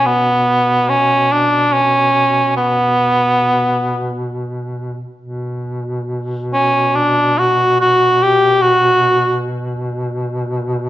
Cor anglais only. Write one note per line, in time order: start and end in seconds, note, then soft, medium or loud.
0.06 0.90 B3 medium
0.89 1.34 C#4 medium
1.32 1.74 D4 medium
1.73 2.56 C#4 medium
2.57 4.26 B3 medium
6.53 6.97 C#4 medium
6.96 7.40 D4 medium
7.39 7.79 F#4 medium
7.81 8.24 F#4 medium
8.23 8.63 G4 medium
8.62 9.44 F#4 medium